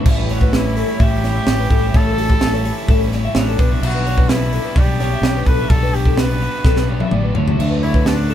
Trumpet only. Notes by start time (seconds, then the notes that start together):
0.24 G4
0.34 F#4
0.55 E4
1.03 G4
1.96 A4
3.38 D4
3.85 F#4
4.29 E4
4.78 G4
5.47 B4
5.69 A4
5.94 G4
6.19 B4
7.82 E4
8.08 D4